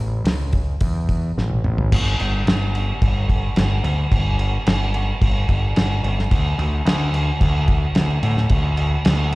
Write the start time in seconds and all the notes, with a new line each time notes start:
Already playing: A1
0.24 C#2, snare, open hi-hat
0.53 kick, open hi-hat
0.81 E2, kick, open hi-hat
1.09 kick, open hi-hat
1.37 A1, snare
1.50 high tom
1.64 A1, mid tom
1.78 floor tom
1.92 G1, kick, crash
2.19 G1, crash
2.46 G1, snare, crash
2.75 crash
3.02 G1, kick, crash
3.29 kick, crash
3.56 G1, snare, crash
3.84 D2, crash
4.11 G1, kick, crash
4.39 crash
4.66 G1, snare, crash
4.94 crash
5.21 G1, kick, crash
5.49 G1, kick, crash
5.76 G1, snare, crash
6.03 G1, crash
6.19 snare
6.31 D2, kick, crash
6.58 D2, crash
6.85 D2, snare, crash
7.14 crash
7.41 D2, kick, crash
7.68 kick, crash
7.95 D2, snare, crash
8.23 A2, crash
8.37 snare
8.49 D2, kick, crash
8.77 crash
9.05 D2, snare, crash